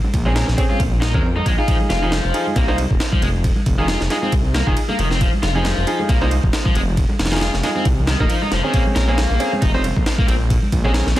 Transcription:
0.04 high bongo, high conga
0.14 detuned saw bass A#1, kick, ride
0.25 overdriven electric guitar G#3, grand piano C4 C#4 G#4, high bongo
0.35 overdriven electric guitar A#4, snare, ride, high conga
0.48 detuned saw bass A#1, snare
0.57 overdriven electric guitar C4, grand piano C4 C#4 G#4, kick, ride, high bongo
0.70 overdriven electric guitar F4, high conga
0.79 detuned saw bass A#1, kick, ride, high bongo
1.01 overdriven electric guitar D#4, snare, ride, high conga
1.14 detuned saw bass F2, overdriven electric guitar G#3, grand piano C4 C#4 A#4, kick, high bongo, low conga
1.36 overdriven electric guitar D#4, high bongo, high conga
1.46 detuned saw bass A#1, overdriven electric guitar G#3, kick, ride
1.58 grand piano D#4 F4 G#4, overdriven electric guitar F4
1.68 overdriven electric guitar F3, kick, ride
1.81 high bongo, high conga
1.90 detuned saw bass F1, overdriven electric guitar F4, snare, ride
2.02 overdriven electric guitar F3, grand piano D#4 F4 G#4
2.12 snare, ride, high bongo, high conga
2.24 detuned saw bass F1
2.34 grand piano D#4 F4 G#4, ride, high bongo
2.47 high conga
2.56 detuned saw bass C2, overdriven electric guitar A#3, kick, ride
2.68 overdriven electric guitar A#3, grand piano D#4 F4 C5, high bongo
2.78 ride, high conga
2.90 detuned saw bass F1, kick, high bongo
3.00 snare, ride
3.12 overdriven electric guitar F3, kick, high conga
3.22 detuned saw bass F1, overdriven electric guitar G#3, ride, high bongo
3.44 kick, ride, high bongo
3.56 high conga
3.66 detuned saw bass F1, kick, ride
3.78 overdriven electric guitar D#3, grand piano D#4 F4 G#4, high bongo
3.88 overdriven electric guitar F4, snare, ride, high conga
4.00 detuned saw bass F1, snare, high bongo
4.10 overdriven electric guitar G#3, grand piano D#4 F4 G#4, snare, ride
4.22 overdriven electric guitar C4, high conga
4.32 detuned saw bass C2, kick, ride, high bongo
4.54 overdriven electric guitar A#3, snare, ride, high bongo, high conga
4.67 detuned saw bass F1, overdriven electric guitar D#3, grand piano D#4 F4 G#4, kick
4.77 ride
4.89 overdriven electric guitar A#3, high bongo, high conga
4.98 detuned saw bass F1, overdriven electric guitar D#3, ride
5.11 overdriven electric guitar C4, snare, high bongo
5.20 overdriven electric guitar F3, kick, ride
5.33 high conga
5.42 detuned saw bass F1, overdriven electric guitar F4, snare, ride, high bongo
5.55 overdriven electric guitar F3, grand piano D#4 F4 G#4
5.64 snare, ride, high bongo, high conga
5.77 detuned saw bass F1
5.87 grand piano D#4 F4 G#4, ride
5.99 high bongo, high conga
6.09 detuned saw bass C2, overdriven electric guitar A#3, kick, ride
6.21 overdriven electric guitar A#3, grand piano D#4 F4 C5, high bongo
6.30 ride, high conga
6.43 detuned saw bass F1, kick
6.53 snare, ride, high bongo
6.65 overdriven electric guitar F3, kick, high conga
6.75 detuned saw bass F1, overdriven electric guitar G#3, ride, high bongo
6.97 kick, ride
7.09 high bongo, high conga
7.19 detuned saw bass F1, snare, ride
7.26 snare, ride
7.32 overdriven electric guitar D#3, grand piano D#4 F4 G#4, snare, ride, high bongo
7.36 snare, ride
7.41 overdriven electric guitar F4, snare, ride, high conga
7.54 detuned saw bass F1, snare
7.63 overdriven electric guitar G#3, grand piano D#4 F4 G#4, snare, ride, high bongo
7.76 overdriven electric guitar C4, high conga
7.85 detuned saw bass C2, kick, ride, high bongo
7.98 low conga
8.07 overdriven electric guitar D#3, snare, ride, high conga
8.20 detuned saw bass F1, overdriven electric guitar A#3, grand piano D#4 F4 A#4, kick, high bongo
8.29 overdriven electric guitar F3, ride
8.42 overdriven electric guitar D#4, high bongo, high conga
8.51 detuned saw bass F1, overdriven electric guitar F3, snare, ride
8.64 overdriven electric guitar D#3, grand piano C4 C#4 G#4
8.73 overdriven electric guitar A#3, kick, ride
8.85 high bongo, high conga
8.95 detuned saw bass A#1, overdriven electric guitar A#4, snare, ride
9.08 overdriven electric guitar A#3, grand piano C4 C#4 G#4
9.18 snare, ride, high bongo, high conga
9.30 detuned saw bass A#1
9.40 grand piano C4 C#4 G#4, ride, high bongo
9.53 high conga
9.62 detuned saw bass F1, overdriven electric guitar D#4, kick, ride
9.74 grand piano C4 C#4 C5, overdriven electric guitar D#4, high bongo
9.84 ride, high conga
9.96 detuned saw bass A#1, kick, high bongo
10.06 snare, ride
10.18 overdriven electric guitar A#3, kick, high conga
10.28 detuned saw bass A#1, overdriven electric guitar C4, ride, high bongo
10.50 kick, ride, high bongo
10.62 high conga
10.72 detuned saw bass A#1, kick, ride
10.85 overdriven electric guitar G#3, grand piano C4 C#4 G#4, high bongo
10.94 overdriven electric guitar A#4, snare, ride, high conga
11.06 detuned saw bass A#1, snare, high bongo
11.16 overdriven electric guitar C4, grand piano C4 C#4 G#4, snare, ride

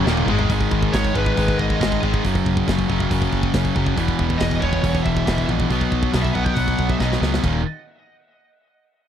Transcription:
Already playing: string section D#3 F#3 A#3 F#4 A#4
0.05 picked electric bass D#1, distorted electric guitar D#2 A#2 D#3, snare
0.17 high tom
0.26 picked electric bass G#1, distorted electric guitar G#2 D#3 G#3, mid tom
0.39 floor tom
0.49 picked electric bass G#1, distorted electric guitar G#2 D#3 G#3, kick, open hi-hat
0.61 kick
0.71 picked electric bass G#1, kick
0.82 kick
0.93 picked electric bass G#1, distorted electric guitar G#2 D#3 G#3, lead electric guitar C#5, kick, snare, open hi-hat
1.04 kick
1.14 picked electric bass G#1, distorted electric guitar G#2 D#3 G#3, lead electric guitar B4, kick
1.26 kick
1.37 picked electric bass G#1, distorted electric guitar G#2 D#3 G#3, kick, open hi-hat
1.48 kick
1.58 picked electric bass G#1, lead electric guitar D#5, kick
1.70 kick
1.80 picked electric bass G#1, distorted electric guitar G#2 D#3 G#3, kick, snare, open hi-hat
1.92 kick
2.02 picked electric bass G#1, distorted electric guitar G#2 D#3 G#3, kick
2.14 kick
2.25 picked electric bass F#1, distorted electric guitar F#2 C#3 F#3, kick, open hi-hat
2.35 kick
2.46 picked electric bass F#1, kick
2.57 kick
2.68 picked electric bass F#1, distorted electric guitar F#2 C#3 F#3, kick, snare, open hi-hat
2.79 kick
2.89 picked electric bass F#1, distorted electric guitar F#2 C#3 F#3, kick
3.00 kick
3.11 picked electric bass F#1, distorted electric guitar F#2 C#3 F#3, kick, open hi-hat
3.22 kick
3.33 picked electric bass F#1, kick
3.43 kick
3.54 picked electric bass F#1, distorted electric guitar F#2 C#3 F#3, kick, snare, open hi-hat
3.65 kick
3.76 picked electric bass F#1, distorted electric guitar F#2 C#3 F#3, kick
3.86 kick
3.97 picked electric bass E1, distorted electric guitar E2 B2 E3, kick, open hi-hat
4.08 kick
4.19 picked electric bass E1, kick
4.30 kick
4.38 picked electric bass E1, distorted electric guitar E2 B2 E3, lead electric guitar D#5, kick, snare, open hi-hat
4.51 kick
4.60 picked electric bass E1, distorted electric guitar E2 B2 E3, lead electric guitar C#5, kick
4.73 kick
4.82 picked electric bass E1, distorted electric guitar E2 B2 E3, kick, open hi-hat
4.95 kick
5.03 picked electric bass E1, lead electric guitar E5, kick
5.17 kick
5.26 picked electric bass E1, distorted electric guitar E2 B2 E3, kick, snare, open hi-hat
5.38 kick
5.48 picked electric bass A#1, distorted electric guitar E2 B2 E3, kick
5.60 kick
5.70 picked electric bass B1, distorted electric guitar B2 F#3 B3, kick, open hi-hat
5.81 kick
5.92 picked electric bass B1, kick
6.03 kick
6.13 picked electric bass B1, distorted electric guitar B2 F#3 B3, kick, snare, open hi-hat
6.22 lead electric guitar E5, kick
6.34 picked electric bass B1, distorted electric guitar B2 F#3 B3, lead electric guitar F#5, kick
6.43 lead electric guitar G5, kick
6.55 picked electric bass B1, distorted electric guitar B2 F#3 B3, lead electric guitar F#5, kick, open hi-hat
6.68 kick
6.79 picked electric bass B1, kick
6.89 lead electric guitar E5, kick
6.99 picked electric bass B1, distorted electric guitar B2 F#3 B3, lead electric guitar D#5, kick, snare
7.13 snare
7.20 picked electric bass C#2, distorted electric guitar B2 F#3 B3, snare
7.34 snare
7.42 picked electric bass D#1, distorted electric guitar D#2 A#2 D#3, kick, crash

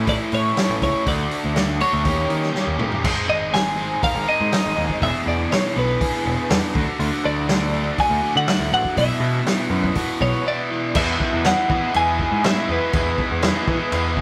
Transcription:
Already playing: picked electric bass A2
0.06 overdriven electric guitar A2 E3 A3 C#4 E4, clean electric guitar D5, kick, open hi-hat
0.32 picked electric bass A2, clean electric guitar C#5, open hi-hat
0.56 overdriven electric guitar A2 E3 A3 C#4 E4, snare, open hi-hat
0.70 picked electric bass A1
0.81 picked electric bass C#2, overdriven electric guitar A2 E3 A3 C#4 E4, clean electric guitar C#5, kick, open hi-hat
1.06 picked electric bass D2, overdriven electric guitar D3 A3 D4 F#4, clean electric guitar D5, kick, open hi-hat
1.31 open hi-hat
1.44 picked electric bass D2
1.55 overdriven electric guitar D3 A3 D4 F#4, snare, open hi-hat
1.80 overdriven electric guitar D3 A3 D4 F#4, clean electric guitar C#5, open hi-hat
1.93 picked electric bass D2
2.04 picked electric bass D#2, overdriven electric guitar D#3 A#3 C#4 G4, kick, open hi-hat
2.30 picked electric bass D#3, open hi-hat
2.43 snare
2.53 overdriven electric guitar D#3 A#3 C#4 G4, snare
2.67 picked electric bass D#2
2.78 picked electric bass A1, overdriven electric guitar D#3 A#3 C#4 G4, mid tom
2.92 floor tom
3.04 picked electric bass G#1, overdriven electric guitar G#3 C4 D#4 G#4, kick, crash
3.28 picked electric bass G#1, overdriven electric guitar C4, clean electric guitar D#5
3.53 overdriven electric guitar G#3, clean electric guitar G#5, snare, open hi-hat
3.77 overdriven electric guitar C4
4.02 overdriven electric guitar A#4, clean electric guitar F5, kick, open hi-hat
4.15 picked electric bass G#1
4.27 overdriven electric guitar C4, clean electric guitar D#5
4.41 picked electric bass G#2
4.51 overdriven electric guitar D#4, snare, open hi-hat
4.66 picked electric bass G#1
4.77 picked electric bass D#2, overdriven electric guitar G#3
4.89 kick
5.00 picked electric bass E1, overdriven electric guitar E2 E3 B3 D4 G#4, clean electric guitar E5, kick, open hi-hat
5.26 picked electric bass E2, overdriven electric guitar B2, clean electric guitar D5
5.51 overdriven electric guitar E3, clean electric guitar C#5, snare, open hi-hat
5.76 picked electric bass B1, overdriven electric guitar B3, clean electric guitar B4
6.01 overdriven electric guitar G#4, kick, open hi-hat
6.25 picked electric bass E1, overdriven electric guitar B3
6.50 picked electric bass E2, overdriven electric guitar D4, snare, open hi-hat
6.74 picked electric bass D2, overdriven electric guitar D3 F#3 A3 D4 F#4, kick
6.99 picked electric bass D2, overdriven electric guitar D3, transistor combo organ E4 A4 F#5 D6, open hi-hat
7.24 picked electric bass D2, overdriven electric guitar A3, clean electric guitar D5
7.49 overdriven electric guitar D3, snare, open hi-hat
7.73 overdriven electric guitar A3
7.98 overdriven electric guitar F#4, clean electric guitar G#5, kick, open hi-hat
8.10 picked electric bass D2
8.23 overdriven electric guitar A3
8.36 picked electric bass D3, clean electric guitar F#5
8.48 overdriven electric guitar E4, snare, open hi-hat
8.59 picked electric bass D2
8.72 picked electric bass A1, overdriven electric guitar D3, clean electric guitar F#5
8.85 kick
8.97 picked electric bass B1, overdriven electric guitar B2 E3 B3 E4 F#4, transistor combo organ B4 B5, clean electric guitar E5, kick, open hi-hat
9.20 picked electric bass B2, overdriven electric guitar E3
9.46 overdriven electric guitar E3, snare, open hi-hat
9.70 picked electric bass F#2, overdriven electric guitar B3
9.84 kick
9.94 overdriven electric guitar F#4, clean electric guitar D5, kick, open hi-hat
10.21 picked electric bass B1, overdriven electric guitar B3, clean electric guitar C#5, kick
10.46 overdriven electric guitar E4, clean electric guitar D5
10.70 overdriven electric guitar E3
10.95 overdriven electric guitar E2 B2 E3 G#3 B3 E4 G#4, picked electric bass E2, transistor combo organ F#4 B4 E5 G#5, clean electric guitar E5, kick, crash
11.20 kick
11.33 picked electric bass E2
11.44 overdriven electric guitar E2 B2 E3 G#3 B3 E4 G#4, clean electric guitar F#5, snare, crash
11.68 overdriven electric guitar E2 B2 E3 G#3 B3 E4 G#4, picked electric bass E3, kick
11.93 overdriven electric guitar E2 B2 E3 G#3 B3 E4 G#4, picked electric bass E2, clean electric guitar G#5, crash
12.19 kick
12.31 picked electric bass G#2
12.43 overdriven electric guitar E2 B2 E3 G#3 B3 E4 G#4, clean electric guitar E5, snare, crash
12.68 overdriven electric guitar E2 B2 E3 G#3 B3 E4 G#4, picked electric bass E2
12.72 clean electric guitar B4
12.93 overdriven electric guitar E2 B2 E3 G#3 B3 E4 G#4, picked electric bass E2, kick, crash
13.18 kick
13.31 picked electric bass E2
13.42 overdriven electric guitar E2 B2 E3 G#3 B3 E4 G#4, snare, crash
13.66 overdriven electric guitar E2 B2 E3 G#3 B3 E4 G#4, picked electric bass E3, kick
13.90 overdriven electric guitar E2 B2 E3 G#3 B3 E4 G#4, picked electric bass E2, crash
14.17 kick

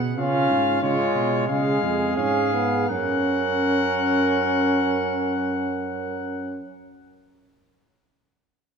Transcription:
Already playing: tuba B2
0.19 tuba C#3, trombone C#4, flugelhorn F4, trumpet F5
0.50 tuba G#2
0.82 tuba C#3, trombone G#3, flugelhorn F4, trumpet C#5
1.15 tuba B2
1.48 tuba C#3, trombone G#3, flugelhorn G#4, trumpet F5
1.83 tuba F2
2.16 tuba G#2, trombone C#4, trumpet F5
2.53 trombone B3
2.88 tuba F#2, trombone C#4, flugelhorn A#4, trumpet F#5

